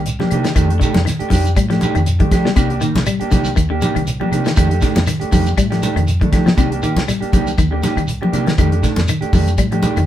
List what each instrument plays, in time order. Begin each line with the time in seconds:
Already playing: fingered electric bass C2
0.06 closed hi-hat, shekere
0.20 clean electric guitar F3 A#3 D4 G4, snare, high conga
0.31 fingered electric bass C3, clean electric guitar D#3 A#3 D4 G4, closed hi-hat, low conga, claves, shekere
0.44 clean electric guitar D#3, snare, closed hi-hat, shekere
0.55 fingered electric bass F2, clean electric guitar D#3 A3 D4 G4, kick, closed hi-hat, claves, shekere
0.70 clean electric guitar A3 D4, closed hi-hat
0.80 clean electric guitar D3 D#3 A3 D4 G4, kick, closed hi-hat, shekere
0.94 fingered electric bass F2, snare, closed hi-hat, high conga, shekere
1.05 clean electric guitar D#3, snare, closed hi-hat, claves, shekere
1.19 clean electric guitar A3 D4 G4, muted fingered electric bass stroke, closed hi-hat
1.30 fingered electric bass F2, clean electric guitar D#3 D4 G4, muted clean electric guitar stroke, kick, open hi-hat, high conga, low conga, shekere
1.45 closed hi-hat, shekere
1.56 fingered electric bass A2, clean electric guitar G3, kick, closed hi-hat, claves, shekere
1.70 clean electric guitar F3 A3 D4 G4, snare, closed hi-hat
1.81 clean electric guitar D#3 A3 D4 G4, closed hi-hat, high conga, shekere
1.95 fingered electric bass F2, clean electric guitar D#3, closed hi-hat, claves, shekere
2.06 closed hi-hat, shekere
2.19 clean electric guitar D#3 A3 D4 G4, kick, closed hi-hat, high conga
2.31 fingered electric bass F3, clean electric guitar A3 D4 G4, kick, snare, closed hi-hat, low conga, claves, shekere
2.45 clean electric guitar G3, snare, shekere
2.56 fingered electric bass C2, clean electric guitar C3 D#3 A#3 D4 G4, kick, closed hi-hat, claves, shekere
2.70 clean electric guitar A#3 D4 G4, closed hi-hat
2.81 clean electric guitar D#3 A#3, muted clean electric guitar stroke, closed hi-hat, shekere
2.95 fingered electric bass C2, snare, closed hi-hat, high conga, low conga, shekere
3.06 clean electric guitar G3, closed hi-hat, claves, shekere
3.20 clean electric guitar A#3 D4 G4, muted fingered electric bass stroke, closed hi-hat
3.31 fingered electric bass C2, clean electric guitar D3 D#3 A#3 D4 G4, kick, closed hi-hat, high conga, low conga, shekere
3.45 closed hi-hat, shekere
3.56 fingered electric bass D#2, clean electric guitar D#3, kick, closed hi-hat, claves, shekere
3.70 clean electric guitar D3 A#3 D4 G4
3.82 clean electric guitar D#3 A#3 D4 G4, closed hi-hat, high conga, shekere
3.95 fingered electric bass C2, clean electric guitar D#3, closed hi-hat, claves, shekere
4.07 closed hi-hat, shekere
4.20 clean electric guitar F3 A#3 D4 G4, high conga
4.31 fingered electric bass C3, clean electric guitar D#3 A#3 D4 G4, closed hi-hat, low conga, claves, shekere
4.45 clean electric guitar D#3, snare, closed hi-hat, shekere
4.56 fingered electric bass F2, clean electric guitar D#3 A3 D4 G4, kick, closed hi-hat, claves, shekere
4.70 clean electric guitar A3 D4 G4, closed hi-hat
4.81 clean electric guitar D3 D#3 A3 D4 G4, kick, snare, closed hi-hat, shekere
4.95 fingered electric bass F2, snare, closed hi-hat, high conga, shekere
5.06 clean electric guitar D#3, snare, closed hi-hat, claves, shekere
5.20 clean electric guitar A3 D4 G4, muted fingered electric bass stroke, closed hi-hat
5.32 fingered electric bass F2, clean electric guitar D#3 A3 D4 G4, kick, open hi-hat, high conga, low conga, shekere
5.46 closed hi-hat, shekere
5.57 fingered electric bass A2, clean electric guitar G3, kick, closed hi-hat, claves, shekere
5.70 clean electric guitar F3 A3 D4 G4, snare, closed hi-hat
5.82 clean electric guitar D#3 A3 D4 G4, closed hi-hat, high conga, shekere
5.96 fingered electric bass F2, clean electric guitar D#3, closed hi-hat, claves, shekere
6.07 closed hi-hat, shekere
6.21 clean electric guitar D#3 A3 D4, muted clean electric guitar stroke, kick, closed hi-hat, high conga
6.32 clean electric guitar D#3 A3 D4 G4, fingered electric bass F3, kick, snare, closed hi-hat, low conga, claves, shekere
6.46 clean electric guitar F3, snare, high conga, shekere
6.57 fingered electric bass C2, clean electric guitar C3 D#3 A#3 D4 G4, kick, closed hi-hat, claves, shekere
6.71 clean electric guitar A#3 D4 G4, closed hi-hat
6.82 clean electric guitar D#3 A#3 G4, closed hi-hat, shekere
6.96 fingered electric bass C2, snare, closed hi-hat, high conga, shekere
7.08 clean electric guitar G3, snare, closed hi-hat, claves, shekere
7.21 clean electric guitar A#3 D4 G4, muted fingered electric bass stroke, closed hi-hat
7.32 fingered electric bass C2, clean electric guitar D3 D#3 A#3 D4 G4, kick, closed hi-hat, high conga, low conga, shekere
7.47 closed hi-hat, shekere
7.58 fingered electric bass D#2, clean electric guitar D#3, kick, closed hi-hat, high conga, claves, shekere
7.71 clean electric guitar D3 A#3 D4 G4
7.83 clean electric guitar D#3 A#3 D4 G4, snare, closed hi-hat, high conga, shekere
7.96 fingered electric bass C2, clean electric guitar D#3, closed hi-hat, claves, shekere
8.08 closed hi-hat, shekere
8.21 clean electric guitar F3 A#3 D4 G4, high conga
8.32 fingered electric bass C3, clean electric guitar D#3 A#3 D4 G4, closed hi-hat, low conga, claves, shekere
8.47 clean electric guitar D#3, snare, closed hi-hat, high conga, shekere
8.58 fingered electric bass F2, clean electric guitar D#3 A3 D4 G4, kick, closed hi-hat, claves, shekere
8.72 clean electric guitar A3 D4 G4, closed hi-hat
8.82 clean electric guitar D3 D#3 A3 D4, kick, snare, closed hi-hat, shekere
8.96 fingered electric bass F2, snare, closed hi-hat, high conga, low conga, shekere
9.08 clean electric guitar D#3, closed hi-hat, claves, shekere
9.21 clean electric guitar A3 D4 G4, muted fingered electric bass stroke, closed hi-hat
9.33 fingered electric bass F2, clean electric guitar D#3 A3 D4 G4, muted clean electric guitar stroke, kick, open hi-hat, high conga, low conga, shekere
9.47 closed hi-hat, shekere
9.58 fingered electric bass A2, clean electric guitar G3, kick, closed hi-hat, high conga, claves, shekere
9.72 clean electric guitar F3 A3 D4 G4, closed hi-hat
9.82 clean electric guitar D#3 A3 D4 G4, closed hi-hat, high conga, shekere
9.97 fingered electric bass F2, clean electric guitar D#3, closed hi-hat, claves, shekere